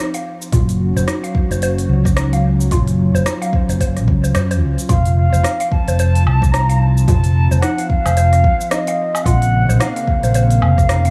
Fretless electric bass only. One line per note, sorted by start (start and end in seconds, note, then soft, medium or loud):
0.53 0.92 F#1 medium
0.96 1.06 F#1 medium
1.51 1.86 F#1 medium
1.89 2.68 C#2 medium
2.71 3.11 F#1 medium
3.14 3.24 F#1 medium
3.69 4.08 F#1 medium
4.08 4.32 C#2 medium
4.35 4.63 F#2 loud
4.63 4.76 C#2 medium
4.90 5.29 F1 medium
5.33 5.42 F1 medium
5.88 6.23 F1 medium
6.26 7.05 C2 medium
7.08 7.47 F1 loud
7.51 7.61 F1 medium
8.06 8.41 F1 medium
9.26 9.65 A#1 medium
9.69 9.78 A#1 medium
10.23 10.59 A#1 medium
10.62 11.10 F1 medium